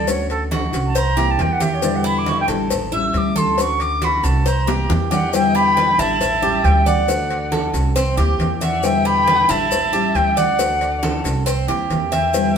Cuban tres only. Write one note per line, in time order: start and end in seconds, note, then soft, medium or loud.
0.52 0.94 F#4 medium
0.95 1.16 C5 medium
1.17 1.59 G4 medium
1.60 2.03 G4 medium
2.04 2.47 E4 medium
2.48 2.91 A4 medium
2.92 3.35 E5 medium
3.36 3.57 A4 medium
4.02 4.44 F#4 medium
4.46 4.67 C5 medium
4.67 5.10 G4 medium
5.11 5.32 G4 medium
5.55 5.76 G4 medium
5.77 5.98 B4 medium
5.99 6.41 E4 medium
6.43 6.85 G4 medium
6.86 7.08 D5 medium
7.52 7.94 A4 medium
7.96 8.17 C4 medium
8.17 8.60 G4 medium
8.61 9.04 E5 medium
9.05 9.26 G4 medium
9.27 9.48 B4 medium
9.49 9.91 E4 medium
9.93 10.35 G4 medium
10.37 10.58 D5 medium
11.03 11.45 A4 medium
11.46 11.67 C4 medium
11.68 12.11 G4 medium
12.12 12.55 E5 medium